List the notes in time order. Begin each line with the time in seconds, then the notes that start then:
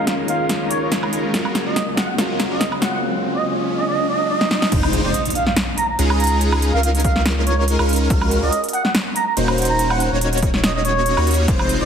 Already playing: C#2 C#3 D#3 G#3 A#3 C#4 D#4 F4 A#4, riser
0.07 F5, snare, closed hi-hat
0.26 D#3 G#3 A#3 C#4 F5, closed hi-hat
0.30 F4
0.49 snare, closed hi-hat
0.71 C#5, closed hi-hat
0.82 C#5
0.92 snare, closed hi-hat
1.03 G#3 C#4 D#4 F4 A#4, high woodblock
1.13 closed hi-hat
1.32 F#3 G#3 A#3 C#4 F4 F#4 A#4, snare, closed hi-hat
1.36 F4
1.45 high woodblock
1.55 snare, closed hi-hat
1.66 G#3 C#4 F4 F#4 A#4 D#5
1.76 snare, closed hi-hat
1.95 F#3 G#3 A#3 C#4 F#5, snare, closed hi-hat
1.99 F4
2.09 F#5
2.17 F#3 G#3 A#3 C#4 F4 F#4 A#4, snare, closed hi-hat
2.40 snare, closed hi-hat
2.51 G#3 C#4 F4 F#4 A#4 D#5
2.61 snare, closed hi-hat
2.72 high woodblock
2.80 F#3 G#3 A#3 C#4 F#5, snare, closed hi-hat
2.84 F4
2.93 F#5
3.35 D#5
3.78 D#5
3.88 D#5
4.09 D#5
4.30 D#5
4.41 snare
4.51 D#5, snare
4.62 snare
4.72 F1 G#3 C4 D#4 F4 C5, kick, closed hi-hat, crash, impact
4.83 high woodblock
4.93 closed hi-hat
5.04 F1 G#3 C4 D#4 F4 C5 D#5
5.14 closed hi-hat
5.25 closed hi-hat
5.30 closed hi-hat
5.35 F5, closed hi-hat
5.47 F5, snare
5.56 snare, closed hi-hat
5.78 A#5, closed hi-hat
5.89 A#5
5.99 C#2 G#3 C#4 D#4 F4 G#4, closed hi-hat
6.10 high woodblock
6.20 A#5, closed hi-hat
6.24 closed hi-hat
6.27 closed hi-hat
6.41 closed hi-hat
6.52 high woodblock
6.62 closed hi-hat
6.73 C#2 G#3 C#4 D#4 F4 A#4 F5
6.83 F5, closed hi-hat
6.95 closed hi-hat
7.00 closed hi-hat
7.04 F5, kick, closed hi-hat
7.16 snare
7.26 snare, closed hi-hat
7.47 C#5, closed hi-hat
7.58 C#5
7.68 closed hi-hat
7.79 C#2 G#3 C#4 D#4 F4 A#4, high woodblock
7.89 closed hi-hat
7.93 closed hi-hat
7.96 closed hi-hat
8.10 C#2 G#3 C#4 F4 F#4 A#4, kick, closed hi-hat
8.21 high woodblock
8.31 closed hi-hat
8.43 C#2 G#3 C#4 F4 F#4 A#4 D#5
8.52 closed hi-hat
8.64 closed hi-hat
8.69 closed hi-hat
8.73 F#5, closed hi-hat
8.85 F#5, snare
8.95 snare, closed hi-hat
9.16 A#5, closed hi-hat
9.27 A#5
9.37 D#1 A#3 C#4 D#4 F#4 C5, closed hi-hat
9.48 high woodblock
9.58 closed hi-hat
9.62 closed hi-hat
9.65 closed hi-hat
9.69 A#5
9.79 closed hi-hat
9.90 F#5, high woodblock
10.00 F#5, closed hi-hat
10.12 D#1 A#3 C#4 D#4 F#4 C#5
10.21 closed hi-hat
10.33 closed hi-hat
10.38 closed hi-hat
10.42 kick, closed hi-hat
10.54 snare
10.64 D#5, snare, closed hi-hat
10.75 D#5
10.85 C#5, closed hi-hat
11.06 closed hi-hat
11.17 D#2 A#3 C#4 D#4 F#4 C#5, high woodblock
11.27 closed hi-hat
11.31 closed hi-hat
11.34 closed hi-hat
11.48 F1 G#3 C4 D#4 F4 C5, kick, closed hi-hat
11.59 high woodblock
11.69 closed hi-hat
11.81 F1 G#3 C4 D#4 F4 C5 D#5